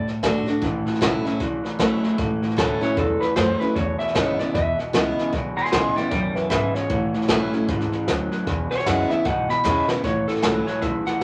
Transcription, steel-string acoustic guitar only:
0.00 0.59 A2 medium
0.23 0.46 D3 loud
0.23 0.46 A3 loud
0.23 0.46 D4 loud
0.23 0.45 F#4 loud
0.46 0.62 D4 soft
0.46 0.61 F#4 medium
0.62 1.37 A2 medium
1.01 1.24 E3 loud
1.01 1.24 A3 medium
1.01 1.25 C#4 medium
1.01 1.24 E4 loud
1.25 1.41 C#4 medium
1.25 1.40 E4 medium
1.40 2.16 E2 loud
1.79 2.17 E3 medium
1.79 2.17 A3 loud
1.79 2.18 C#4 loud
1.79 2.18 E4 loud
2.18 2.94 A2 loud
2.57 2.80 E3 medium
2.57 2.81 A3 medium
2.57 2.81 C#4 loud
2.57 2.80 E4 medium
2.81 2.97 C#4 medium
2.81 2.96 E4 medium
2.97 3.73 E2 medium
3.36 3.59 E3 medium
3.36 3.60 A3 medium
3.36 3.60 C#4 medium
3.36 3.60 E4 loud
3.61 3.77 C#4 soft
3.61 3.76 E4 medium
3.76 4.52 E2 medium
4.15 4.38 E3 medium
4.15 4.38 G#3 medium
4.15 4.39 B3 medium
4.15 4.38 E4 medium
4.39 4.55 B3 soft
4.39 4.54 E4 medium
4.55 5.30 B2 medium
4.93 5.31 E3 loud
4.93 5.32 G#3 medium
4.93 5.32 B3 medium
4.93 5.32 E4 loud
5.33 6.08 E2 medium
5.73 5.95 E3 medium
5.73 5.96 G#3 medium
5.73 5.96 B3 medium
5.73 5.95 E4 loud
5.96 6.12 B3 medium
5.96 6.11 E4 medium
6.11 6.49 F#2 loud
6.50 6.88 G#2 loud
6.90 7.65 A2 medium
7.28 7.51 E3 medium
7.28 7.52 A3 medium
7.28 7.52 C#4 loud
7.28 7.51 E4 loud
7.52 7.68 C#4 soft
7.52 7.67 E4 medium
7.68 8.06 G#2 loud
8.09 8.46 F#2 loud
8.47 9.22 E2 medium
8.86 9.09 E3 medium
8.86 9.09 G#3 medium
8.86 9.10 B3 loud
8.86 9.09 E4 loud
9.10 9.26 B3 medium
9.10 9.25 E4 medium
9.25 10.01 B2 medium
9.64 9.87 E3 medium
9.64 9.88 G#3 loud
9.64 9.88 B3 loud
9.64 9.87 E4 loud
9.89 10.04 B3 soft
9.89 10.03 E4 medium
10.04 10.79 A2 medium
10.42 10.81 E3 medium
10.42 10.81 A3 medium
10.42 10.81 C#4 medium
10.42 10.82 E4 medium
10.82 11.23 E2 medium

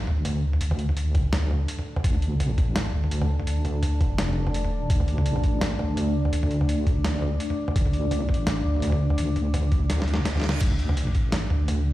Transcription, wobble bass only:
0.08 0.60 D2 loud
0.61 1.67 D2 medium
2.04 2.57 D2 medium
2.58 2.92 A1 medium
2.93 3.46 D2 loud
3.47 3.99 D2 loud
4.01 4.63 F1 medium
4.63 4.89 E1 medium
4.90 5.42 D2 loud
5.44 5.78 A1 medium
5.80 6.32 D2 loud
6.33 7.39 D2 medium
7.76 8.28 D2 loud
8.29 8.64 A1 medium
8.65 9.17 D2 loud
9.18 10.24 D2 loud
10.25 10.60 D2 medium
10.61 11.14 D2 medium
11.15 11.49 A1 medium
11.51 11.93 D2 loud

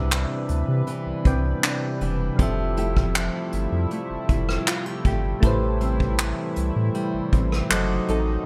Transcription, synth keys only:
0.00 1.20 C3 medium
0.00 1.21 C4 medium
0.00 1.21 B4 medium
0.00 1.22 D5 medium
0.00 1.23 E5 medium
1.24 2.39 C3 medium
1.24 2.37 C4 medium
1.24 2.39 B4 medium
1.24 2.40 D5 medium
1.24 2.40 G5 medium
2.37 5.38 F3 medium
2.37 5.38 C4 medium
2.37 5.39 G4 medium
2.41 5.40 A4 medium
2.41 5.41 E5 medium
5.40 7.65 A3 medium
5.40 7.66 E4 medium
5.40 7.67 G4 medium
5.45 7.68 B4 medium
5.45 7.68 C5 medium
7.69 8.46 F#3 medium
7.69 8.46 F#4 medium
7.69 8.45 A4 medium
7.69 8.46 C5 medium
7.69 8.46 D#5 medium

